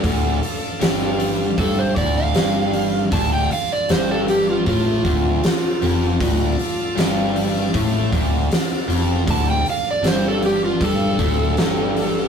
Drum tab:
HH |oooooooo|oooooooo|oooooooo|oooooooo|
SD |--o---o-|--o---o-|--o---o-|--o---o-|
BD |o---oo--|o---oo--|o---oo--|o---oo--|